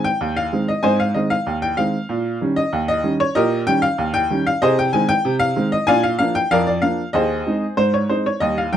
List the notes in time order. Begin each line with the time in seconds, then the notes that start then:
0.04 G5
0.21 D#2
0.37 F5
0.52 D#3 G#3 C4
0.68 D#5
0.83 G#2 C4 C5 D#5 G#5
1.00 F5
1.14 D#3 G#3 C4 D#5
1.30 F5
1.47 D#2
1.62 G5
1.77 D#3 G#3 C4 F5
2.09 A#2
2.41 D#3 G3 C#4
2.56 D#5
2.73 D#2
2.88 D#5
3.04 D#3 G3 C#4
3.20 C#5
3.35 A#2 G4 A#4 D#5
3.67 D#3 G3 C#4 G5
3.82 F5
3.98 D#2
4.14 G5
4.30 D#3 G3 C#4
4.47 F5
4.62 C3 G#4 C5 D#5
4.79 G5
4.93 D#3 G#3 C4 G#5
5.09 G5
5.25 C3
5.39 F5
5.56 D#3 G#3 C4
5.72 D#5
5.87 A#2 D4 D5 F5 G#5
6.03 F5
6.19 F3 A#3 D4 F5
6.35 G5
6.51 F2 A#4 D5 F5
6.67 D5
6.82 F3 A#3 D4 F5
7.13 D#2 G#4 C5 D#5
7.47 G#3 C4 D#4
7.77 G#2 C5
7.94 C#5
8.09 G#3 C4 D#4 C5
8.26 C#5
8.40 D#2 G3 D#5
8.58 F5
8.73 G1 G2 G5